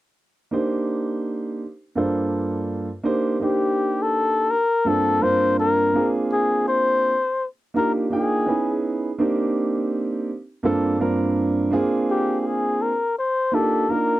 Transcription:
0.51 1.61 A#3 medium
0.51 1.61 D4 medium
0.51 1.62 D#4 medium
0.51 1.62 G4 medium
0.51 1.62 C5 medium
1.95 2.86 G2 medium
1.95 2.86 A#3 medium
1.95 2.86 D4 medium
1.95 2.87 F4 medium
1.95 2.87 A4 medium
1.95 2.87 C5 medium
3.03 3.35 A#3 medium
3.03 3.35 D4 medium
3.03 3.35 D#4 medium
3.03 3.36 G4 medium
3.03 3.36 C5 medium
3.40 4.50 A#3 medium
3.40 4.50 D4 medium
3.40 4.50 D#4 medium
3.40 4.51 G4 medium
3.40 4.51 C5 medium
3.44 4.04 G4 medium
4.03 4.53 A4 loud
4.51 4.89 A#4 loud
4.85 5.16 G2 medium
4.85 5.16 A#3 medium
4.85 5.16 C4 medium
4.85 5.17 D4 medium
4.85 5.17 F4 medium
4.85 5.17 A4 medium
4.85 5.24 A4 loud
5.20 5.93 G2 medium
5.20 5.92 A#3 medium
5.20 5.92 C4 medium
5.20 5.93 D4 medium
5.20 5.94 F4 medium
5.20 5.95 A#4 medium
5.20 5.58 C5 loud
5.60 6.13 A#4 loud
5.94 7.11 A#3 medium
5.94 7.11 C4 medium
5.94 7.12 D4 medium
5.94 7.12 F4 medium
5.94 7.12 G#4 medium
6.32 6.65 G#4 medium
6.68 7.47 C5 loud
7.74 8.05 A#3 medium
7.74 8.05 D4 medium
7.74 8.06 D#4 medium
7.74 8.06 F4 medium
7.74 8.06 G4 medium
7.74 7.93 A#4 medium
8.10 8.47 A#3 medium
8.10 8.47 D4 medium
8.10 8.45 D#4 medium
8.10 8.48 F4 medium
8.10 8.81 G#4 medium
8.10 8.48 G5 medium
8.46 9.08 B3 medium
8.46 9.08 C#4 medium
8.46 9.08 D#4 medium
8.46 9.09 E4 medium
8.46 9.09 G#4 medium
9.18 10.28 A#3 medium
9.18 10.28 C4 medium
9.18 10.29 D4 medium
9.18 10.29 D#4 medium
9.18 10.29 G4 medium
10.63 10.94 G2 medium
10.63 10.94 A#3 medium
10.63 10.94 C4 medium
10.63 10.95 D4 medium
10.63 10.95 F4 medium
10.63 10.95 A4 medium
10.99 11.72 G2 medium
10.99 11.69 A#3 medium
10.99 11.70 C4 medium
10.99 11.71 D4 medium
10.99 11.71 F4 medium
10.99 11.73 A#4 medium
11.71 12.89 A#3 medium
11.71 12.89 C4 medium
11.71 12.90 D4 medium
11.71 12.90 F4 medium
11.71 12.90 G#4 loud
12.10 12.41 G4 medium
12.41 12.48 G4 medium
12.46 12.84 G#4 medium
12.82 13.18 A#4 medium
13.19 13.56 C5 medium
13.52 13.83 A#3 medium
13.52 13.83 D4 medium
13.52 13.83 D#4 medium
13.52 13.84 F4 medium
13.52 13.84 G4 medium
13.52 13.92 A4 medium
13.89 14.20 A#3 medium
13.89 14.20 D4 medium
13.89 14.20 D#4 medium
13.89 14.20 F4 medium
13.89 14.20 A#4 medium

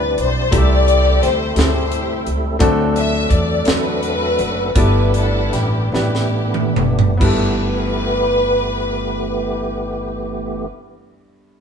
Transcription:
0.00 0.13 D2 loud
0.00 0.52 C3 medium
0.00 0.48 G3 medium
0.00 0.48 C4 medium
0.00 0.52 C4 loud
0.00 0.48 D4 medium
0.00 0.54 D4 medium
0.00 0.48 E4 medium
0.00 0.52 E4 loud
0.00 0.14 F#4 medium
0.00 0.17 B4 loud
0.00 0.54 B4 loud
0.00 0.48 D5 medium
0.00 0.54 F#5 medium
0.18 0.50 B1 medium
0.18 0.54 C5 loud
0.18 closed hi-hat soft
0.51 1.18 C2 loud
0.51 1.52 C3 medium
0.51 2.57 G3 medium
0.51 1.17 A3 medium
0.51 2.57 A3 medium
0.51 1.17 C4 medium
0.51 2.57 C4 medium
0.51 1.17 E4 medium
0.51 2.57 E4 medium
0.51 1.17 G4 medium
0.51 1.54 G4 medium
0.51 1.18 A4 medium
0.51 2.57 A4 medium
0.51 1.53 A4 medium
0.51 kick loud
0.51 closed hi-hat loud
0.56 1.23 D5 loud
0.88 closed hi-hat medium
1.22 1.54 D2 medium
1.22 1.58 C5 loud
1.22 snare soft
1.22 closed hi-hat medium
1.55 2.22 D2 loud
1.55 2.21 A3 medium
1.55 2.21 C4 medium
1.55 2.21 E4 medium
1.55 2.22 G4 medium
1.55 1.63 G#4 medium
1.55 snare loud
1.55 closed hi-hat medium
1.60 2.58 E4 medium
1.60 2.58 G4 medium
1.60 2.32 C5 loud
1.64 2.25 A4 medium
1.92 closed hi-hat medium
2.26 2.58 C#2 medium
2.26 closed hi-hat soft
2.59 3.27 D2 loud
2.59 3.62 D3 medium
2.59 4.72 F#3 medium
2.59 3.25 A3 loud
2.59 4.72 A3 medium
2.59 3.25 C4 medium
2.59 4.72 C4 medium
2.59 3.26 D4 loud
2.59 4.72 D4 medium
2.59 3.26 F#4 loud
2.59 3.26 A4 loud
2.59 4.72 A4 loud
2.59 kick loud
2.59 closed hi-hat loud
2.96 3.29 E5 loud
2.96 closed hi-hat medium
3.31 3.63 E2 loud
3.31 3.67 D5 loud
3.31 kick medium
3.31 closed hi-hat medium
3.65 4.35 E2 medium
3.65 4.34 A3 medium
3.65 4.34 C4 medium
3.65 4.34 D4 medium
3.65 4.34 F#4 medium
3.65 4.73 F#4 medium
3.65 4.77 B4 loud
3.65 4.34 D5 medium
3.65 snare loud
3.65 closed hi-hat medium
4.03 closed hi-hat soft
4.39 4.73 F#1 medium
4.39 closed hi-hat soft
4.75 5.49 G1 loud
4.75 5.89 G2 medium
4.75 7.16 E3 medium
4.75 7.17 A3 medium
4.75 7.16 B3 medium
4.75 5.48 B3 medium
4.75 7.16 D4 medium
4.75 5.48 D4 medium
4.75 5.90 D4 medium
4.75 5.48 E4 medium
4.75 5.90 E4 medium
4.75 7.17 G4 medium
4.75 5.48 G4 medium
4.75 5.48 A4 loud
4.75 5.12 B4 loud
4.75 kick loud
4.75 closed hi-hat loud
5.14 5.54 A4 medium
5.14 closed hi-hat medium
5.53 5.89 A1 loud
5.53 5.94 G4 medium
5.53 snare soft
5.53 closed hi-hat medium
5.92 6.72 A1 loud
5.92 6.71 B3 medium
5.92 7.18 B3 medium
5.92 6.71 D4 medium
5.92 6.71 E4 medium
5.92 7.18 E4 medium
5.92 6.72 G4 medium
5.92 6.85 G4 medium
5.92 6.72 B4 medium
5.92 snare medium
6.15 snare medium
6.54 mid tom medium
6.76 7.17 F#1 medium
6.76 mid tom loud
6.99 floor tom loud
7.17 10.66 G1 loud
7.17 10.66 G2 medium
7.17 10.65 E3 medium
7.17 10.62 B3 medium
7.17 10.64 E4 medium
7.17 kick loud
7.17 crash medium
7.21 10.66 A3 medium
7.21 10.66 B3 medium
7.21 10.66 G4 loud
7.21 10.67 G4 medium
7.21 10.69 A4 loud
7.21 10.66 B4 loud

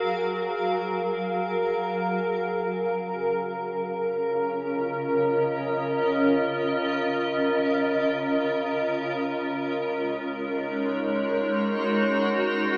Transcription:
0.00 1.91 F#3 medium
0.00 1.90 F#4 medium
0.00 3.62 G#4 medium
0.00 12.78 A#4 medium
0.00 3.41 F5 medium
1.91 9.11 C#3 medium
2.44 11.86 C#4 medium
3.17 9.11 F4 medium
3.89 10.26 D#5 medium
9.10 12.78 G#3 medium
9.44 12.78 C#5 medium
9.89 12.78 D#4 medium
10.38 12.78 F#4 medium

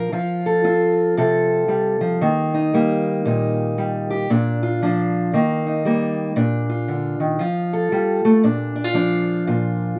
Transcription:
0.00 0.11 A#2 medium
0.00 0.11 F3 medium
0.00 0.11 D4 medium
0.00 0.11 F4 medium
0.00 0.10 A#4 medium
0.12 1.68 F3 medium
0.12 0.63 F4 medium
0.46 1.17 A4 medium
0.64 2.18 C4 medium
0.64 2.18 F4 medium
1.17 2.21 C3 medium
1.17 2.19 A4 medium
1.68 2.00 G3 medium
2.01 2.20 F3 medium
2.21 4.26 D#3 medium
2.21 2.74 A#3 medium
2.54 3.25 D#4 medium
2.74 3.77 G3 medium
2.74 4.30 A#3 medium
3.25 4.26 A#2 medium
3.25 4.27 D#4 medium
3.78 4.27 G3 medium
4.10 4.29 G4 medium
4.30 5.31 A#2 medium
4.30 4.81 D4 medium
4.63 5.31 F4 medium
4.82 5.33 F3 medium
4.82 5.31 D4 medium
5.33 6.34 D#3 medium
5.33 5.85 A#3 medium
5.66 6.35 D#4 medium
5.85 6.34 G3 medium
5.85 6.36 A#3 medium
6.36 7.38 A#2 medium
6.36 7.38 D4 medium
6.69 7.38 F4 medium
6.88 7.20 D3 medium
7.20 7.40 D#3 medium
7.39 7.91 F3 medium
7.39 8.42 F4 medium
7.73 8.42 A4 medium
7.92 8.24 G3 medium
8.25 8.44 A3 medium
8.43 9.47 A#2 medium
8.43 8.76 D4 medium
8.76 8.84 D4 medium
8.84 9.47 F4 soft
8.94 9.98 F3 medium
8.94 9.99 D4 medium
9.47 9.99 A#2 medium
9.47 9.99 F4 medium

